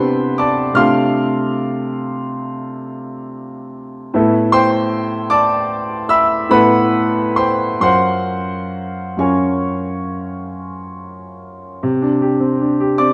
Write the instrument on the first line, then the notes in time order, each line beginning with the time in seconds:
grand piano
Already playing: C3 B3 D4 E4 G4 A4 B4 C5 E5 F#5 G5 A5 B5 C6
0.38 D5 A5 D6
0.74 C3 A3 D4 F4 A4 F5 C6 F6
4.14 A2 A3 B3 E4 A4
4.52 C5 G5 C6
5.30 D5 A5 D6
6.09 E5 B5 E6
6.49 A2 A3 B3 E4 A4 B4 F#5 B5
7.36 C5 G5 C6
7.80 F#2 C#4 F4 A#4 C5 F#5 C6
9.17 F#2 C#4 F4 A#4 C#5 G#5 C#6
11.83 C3
12.02 D4
12.22 G4
12.40 C4
12.61 D4
12.80 G4
12.98 C4 D5 D6